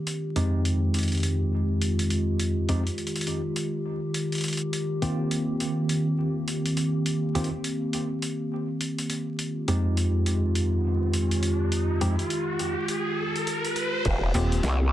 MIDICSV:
0, 0, Header, 1, 7, 480
1, 0, Start_track
1, 0, Key_signature, -4, "minor"
1, 0, Tempo, 582524
1, 59, Time_signature, 4, 2, 24, 8
1, 12299, End_track
2, 0, Start_track
2, 0, Title_t, "Tine electric piano"
2, 0, Program_c, 0, 4
2, 297, Note_on_c, 0, 41, 79
2, 297, Note_on_c, 0, 63, 78
2, 297, Note_on_c, 0, 67, 91
2, 298, Note_on_c, 0, 56, 76
2, 298, Note_on_c, 0, 60, 76
2, 2195, Note_off_c, 0, 41, 0
2, 2195, Note_off_c, 0, 63, 0
2, 2195, Note_off_c, 0, 67, 0
2, 2196, Note_off_c, 0, 56, 0
2, 2196, Note_off_c, 0, 60, 0
2, 2216, Note_on_c, 0, 60, 83
2, 2217, Note_on_c, 0, 41, 92
2, 2217, Note_on_c, 0, 56, 82
2, 2217, Note_on_c, 0, 63, 81
2, 2218, Note_on_c, 0, 67, 96
2, 2327, Note_off_c, 0, 41, 0
2, 2327, Note_off_c, 0, 56, 0
2, 2327, Note_off_c, 0, 60, 0
2, 2327, Note_off_c, 0, 63, 0
2, 2327, Note_off_c, 0, 67, 0
2, 4136, Note_on_c, 0, 58, 76
2, 4137, Note_on_c, 0, 51, 79
2, 4137, Note_on_c, 0, 60, 75
2, 4137, Note_on_c, 0, 65, 74
2, 4137, Note_on_c, 0, 67, 88
2, 6035, Note_off_c, 0, 51, 0
2, 6035, Note_off_c, 0, 58, 0
2, 6035, Note_off_c, 0, 60, 0
2, 6035, Note_off_c, 0, 65, 0
2, 6035, Note_off_c, 0, 67, 0
2, 6056, Note_on_c, 0, 51, 88
2, 6056, Note_on_c, 0, 65, 82
2, 6057, Note_on_c, 0, 58, 79
2, 6057, Note_on_c, 0, 60, 86
2, 6057, Note_on_c, 0, 67, 100
2, 6166, Note_off_c, 0, 51, 0
2, 6167, Note_off_c, 0, 58, 0
2, 6167, Note_off_c, 0, 60, 0
2, 6167, Note_off_c, 0, 65, 0
2, 6167, Note_off_c, 0, 67, 0
2, 7977, Note_on_c, 0, 63, 77
2, 7978, Note_on_c, 0, 41, 85
2, 7978, Note_on_c, 0, 56, 75
2, 7978, Note_on_c, 0, 60, 73
2, 7978, Note_on_c, 0, 67, 88
2, 9876, Note_off_c, 0, 41, 0
2, 9876, Note_off_c, 0, 56, 0
2, 9876, Note_off_c, 0, 60, 0
2, 9876, Note_off_c, 0, 63, 0
2, 9876, Note_off_c, 0, 67, 0
2, 9897, Note_on_c, 0, 60, 85
2, 9898, Note_on_c, 0, 67, 104
2, 9899, Note_on_c, 0, 41, 88
2, 9899, Note_on_c, 0, 56, 80
2, 9899, Note_on_c, 0, 63, 85
2, 10007, Note_off_c, 0, 60, 0
2, 10008, Note_off_c, 0, 41, 0
2, 10008, Note_off_c, 0, 56, 0
2, 10008, Note_off_c, 0, 63, 0
2, 10008, Note_off_c, 0, 67, 0
2, 11818, Note_on_c, 0, 58, 85
2, 11818, Note_on_c, 0, 60, 81
2, 11818, Note_on_c, 0, 67, 98
2, 11819, Note_on_c, 0, 65, 79
2, 12299, Note_off_c, 0, 58, 0
2, 12299, Note_off_c, 0, 60, 0
2, 12299, Note_off_c, 0, 65, 0
2, 12299, Note_off_c, 0, 67, 0
2, 12299, End_track
3, 0, Start_track
3, 0, Title_t, "Ambient pad"
3, 0, Program_c, 1, 92
3, 0, Note_on_c, 1, 67, 94
3, 56, Note_on_c, 1, 65, 80
3, 57, Note_on_c, 1, 51, 88
3, 57, Note_on_c, 1, 56, 81
3, 3864, Note_off_c, 1, 65, 0
3, 3865, Note_off_c, 1, 56, 0
3, 3898, Note_on_c, 1, 58, 80
3, 3898, Note_on_c, 1, 60, 79
3, 7705, Note_off_c, 1, 51, 0
3, 7705, Note_off_c, 1, 58, 0
3, 7705, Note_off_c, 1, 60, 0
3, 7705, Note_off_c, 1, 67, 0
3, 7739, Note_on_c, 1, 51, 90
3, 7739, Note_on_c, 1, 56, 79
3, 7739, Note_on_c, 1, 67, 92
3, 7740, Note_on_c, 1, 65, 80
3, 11546, Note_off_c, 1, 51, 0
3, 11546, Note_off_c, 1, 56, 0
3, 11546, Note_off_c, 1, 65, 0
3, 11546, Note_off_c, 1, 67, 0
3, 11578, Note_on_c, 1, 51, 92
3, 11579, Note_on_c, 1, 58, 88
3, 11579, Note_on_c, 1, 60, 82
3, 11579, Note_on_c, 1, 67, 99
3, 12299, Note_off_c, 1, 51, 0
3, 12299, Note_off_c, 1, 58, 0
3, 12299, Note_off_c, 1, 60, 0
3, 12299, Note_off_c, 1, 67, 0
3, 12299, End_track
4, 0, Start_track
4, 0, Title_t, "Wobble bass"
4, 0, Program_c, 2, 39
4, 11580, Note_on_c, 2, 27, 99
4, 11804, Note_off_c, 2, 27, 0
4, 12058, Note_on_c, 2, 36, 96
4, 12299, Note_off_c, 2, 36, 0
4, 12299, End_track
5, 0, Start_track
5, 0, Title_t, "FM bass"
5, 0, Program_c, 3, 39
5, 11821, Note_on_c, 3, 27, 92
5, 12045, Note_off_c, 3, 27, 0
5, 12299, End_track
6, 0, Start_track
6, 0, Title_t, "Riser"
6, 0, Program_c, 4, 103
6, 7738, Note_on_c, 4, 60, 73
6, 11578, Note_off_c, 4, 60, 0
6, 12299, End_track
7, 0, Start_track
7, 0, Title_t, "Drums"
7, 56, Note_on_c, 9, 42, 69
7, 139, Note_off_c, 9, 42, 0
7, 297, Note_on_c, 9, 42, 59
7, 379, Note_off_c, 9, 42, 0
7, 537, Note_on_c, 9, 42, 71
7, 620, Note_off_c, 9, 42, 0
7, 775, Note_on_c, 9, 42, 60
7, 812, Note_off_c, 9, 42, 0
7, 812, Note_on_c, 9, 42, 47
7, 849, Note_off_c, 9, 42, 0
7, 849, Note_on_c, 9, 42, 38
7, 888, Note_off_c, 9, 42, 0
7, 888, Note_on_c, 9, 42, 33
7, 922, Note_off_c, 9, 42, 0
7, 922, Note_on_c, 9, 42, 28
7, 945, Note_off_c, 9, 42, 0
7, 945, Note_on_c, 9, 42, 24
7, 968, Note_off_c, 9, 42, 0
7, 968, Note_on_c, 9, 42, 19
7, 990, Note_off_c, 9, 42, 0
7, 990, Note_on_c, 9, 42, 16
7, 1014, Note_off_c, 9, 42, 0
7, 1014, Note_on_c, 9, 42, 78
7, 1096, Note_off_c, 9, 42, 0
7, 1496, Note_on_c, 9, 42, 76
7, 1578, Note_off_c, 9, 42, 0
7, 1641, Note_on_c, 9, 42, 61
7, 1723, Note_off_c, 9, 42, 0
7, 1734, Note_on_c, 9, 42, 63
7, 1816, Note_off_c, 9, 42, 0
7, 1974, Note_on_c, 9, 42, 69
7, 2056, Note_off_c, 9, 42, 0
7, 2214, Note_on_c, 9, 42, 61
7, 2296, Note_off_c, 9, 42, 0
7, 2362, Note_on_c, 9, 42, 34
7, 2444, Note_off_c, 9, 42, 0
7, 2455, Note_on_c, 9, 42, 30
7, 2527, Note_off_c, 9, 42, 0
7, 2527, Note_on_c, 9, 42, 37
7, 2600, Note_off_c, 9, 42, 0
7, 2600, Note_on_c, 9, 42, 48
7, 2645, Note_off_c, 9, 42, 0
7, 2645, Note_on_c, 9, 42, 62
7, 2693, Note_off_c, 9, 42, 0
7, 2693, Note_on_c, 9, 42, 59
7, 2775, Note_off_c, 9, 42, 0
7, 2934, Note_on_c, 9, 42, 74
7, 3016, Note_off_c, 9, 42, 0
7, 3415, Note_on_c, 9, 42, 71
7, 3497, Note_off_c, 9, 42, 0
7, 3562, Note_on_c, 9, 42, 26
7, 3586, Note_off_c, 9, 42, 0
7, 3586, Note_on_c, 9, 42, 29
7, 3610, Note_off_c, 9, 42, 0
7, 3610, Note_on_c, 9, 42, 33
7, 3633, Note_off_c, 9, 42, 0
7, 3633, Note_on_c, 9, 42, 37
7, 3657, Note_off_c, 9, 42, 0
7, 3657, Note_on_c, 9, 42, 64
7, 3693, Note_off_c, 9, 42, 0
7, 3693, Note_on_c, 9, 42, 41
7, 3730, Note_off_c, 9, 42, 0
7, 3730, Note_on_c, 9, 42, 47
7, 3768, Note_off_c, 9, 42, 0
7, 3768, Note_on_c, 9, 42, 49
7, 3851, Note_off_c, 9, 42, 0
7, 3897, Note_on_c, 9, 42, 68
7, 3980, Note_off_c, 9, 42, 0
7, 4137, Note_on_c, 9, 42, 57
7, 4220, Note_off_c, 9, 42, 0
7, 4376, Note_on_c, 9, 42, 68
7, 4459, Note_off_c, 9, 42, 0
7, 4617, Note_on_c, 9, 42, 57
7, 4699, Note_off_c, 9, 42, 0
7, 4856, Note_on_c, 9, 42, 70
7, 4938, Note_off_c, 9, 42, 0
7, 5336, Note_on_c, 9, 42, 71
7, 5419, Note_off_c, 9, 42, 0
7, 5484, Note_on_c, 9, 42, 53
7, 5566, Note_off_c, 9, 42, 0
7, 5577, Note_on_c, 9, 42, 61
7, 5660, Note_off_c, 9, 42, 0
7, 5816, Note_on_c, 9, 42, 67
7, 5898, Note_off_c, 9, 42, 0
7, 6058, Note_on_c, 9, 42, 57
7, 6132, Note_off_c, 9, 42, 0
7, 6132, Note_on_c, 9, 42, 31
7, 6215, Note_off_c, 9, 42, 0
7, 6297, Note_on_c, 9, 42, 69
7, 6380, Note_off_c, 9, 42, 0
7, 6536, Note_on_c, 9, 42, 57
7, 6618, Note_off_c, 9, 42, 0
7, 6776, Note_on_c, 9, 42, 68
7, 6858, Note_off_c, 9, 42, 0
7, 7256, Note_on_c, 9, 42, 73
7, 7339, Note_off_c, 9, 42, 0
7, 7403, Note_on_c, 9, 42, 55
7, 7486, Note_off_c, 9, 42, 0
7, 7495, Note_on_c, 9, 42, 60
7, 7578, Note_off_c, 9, 42, 0
7, 7736, Note_on_c, 9, 42, 73
7, 7818, Note_off_c, 9, 42, 0
7, 7976, Note_on_c, 9, 42, 57
7, 8059, Note_off_c, 9, 42, 0
7, 8217, Note_on_c, 9, 42, 66
7, 8299, Note_off_c, 9, 42, 0
7, 8455, Note_on_c, 9, 42, 58
7, 8538, Note_off_c, 9, 42, 0
7, 8696, Note_on_c, 9, 42, 73
7, 8778, Note_off_c, 9, 42, 0
7, 9176, Note_on_c, 9, 42, 71
7, 9258, Note_off_c, 9, 42, 0
7, 9323, Note_on_c, 9, 42, 57
7, 9405, Note_off_c, 9, 42, 0
7, 9416, Note_on_c, 9, 42, 61
7, 9498, Note_off_c, 9, 42, 0
7, 9656, Note_on_c, 9, 42, 70
7, 9738, Note_off_c, 9, 42, 0
7, 9897, Note_on_c, 9, 42, 66
7, 9980, Note_off_c, 9, 42, 0
7, 10044, Note_on_c, 9, 42, 34
7, 10127, Note_off_c, 9, 42, 0
7, 10137, Note_on_c, 9, 42, 69
7, 10219, Note_off_c, 9, 42, 0
7, 10377, Note_on_c, 9, 42, 58
7, 10460, Note_off_c, 9, 42, 0
7, 10617, Note_on_c, 9, 42, 78
7, 10699, Note_off_c, 9, 42, 0
7, 11006, Note_on_c, 9, 42, 34
7, 11088, Note_off_c, 9, 42, 0
7, 11099, Note_on_c, 9, 42, 81
7, 11182, Note_off_c, 9, 42, 0
7, 11244, Note_on_c, 9, 42, 60
7, 11326, Note_off_c, 9, 42, 0
7, 11337, Note_on_c, 9, 42, 62
7, 11420, Note_off_c, 9, 42, 0
7, 11577, Note_on_c, 9, 42, 79
7, 11577, Note_on_c, 9, 49, 98
7, 11580, Note_on_c, 9, 36, 113
7, 11659, Note_off_c, 9, 42, 0
7, 11659, Note_off_c, 9, 49, 0
7, 11662, Note_off_c, 9, 36, 0
7, 11817, Note_on_c, 9, 42, 72
7, 11900, Note_off_c, 9, 42, 0
7, 11965, Note_on_c, 9, 42, 35
7, 12048, Note_off_c, 9, 42, 0
7, 12058, Note_on_c, 9, 38, 119
7, 12058, Note_on_c, 9, 42, 76
7, 12140, Note_off_c, 9, 38, 0
7, 12140, Note_off_c, 9, 42, 0
7, 12299, End_track
0, 0, End_of_file